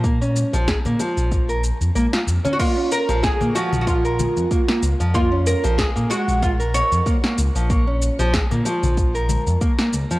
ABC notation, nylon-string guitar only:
X:1
M:4/4
L:1/16
Q:"Swing 16ths" 1/4=94
K:Bbm
V:1 name="Nylon-string guitar"
B, D2 F, A B, F,3 B z2 B, F z D | B, D2 F, A B, F,3 B3 B, B, z F, | B, D2 F, A B, A,3 B3 B, B, z F, | B, D2 F, A B, F,3 B3 B, B, z F, |]